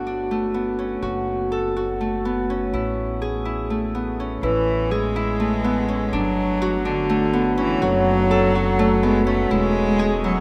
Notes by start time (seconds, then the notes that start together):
Already playing: G1 A3 B3 E4 F#4
0.07 D4
0.31 A3
0.54 B3
0.79 C#4
1.02 F#1 F#4
1.52 A4
1.77 F#4
2.01 A3
2.25 B3
2.50 C#4
2.73 A1 E4
3.22 G#4
3.45 E4
3.70 A3
3.95 B3
4.20 C#4
4.42 A1 E3 E4 B4
4.91 G#3 G#4
5.16 E4
5.40 A3
5.64 B3
5.88 C#4
6.13 G1 F#3 D4
6.62 F#4
6.85 D3 D4
7.09 A3
7.33 B3 A4
7.58 E3 C#4
7.82 F#1 F#3 F#4 C#5
8.31 A4
8.55 F#4
8.79 A3 D5
9.03 G#3 B3
9.27 A3 C#4
9.51 E1 G#3 E4
9.99 G#4
10.24 F#3 E4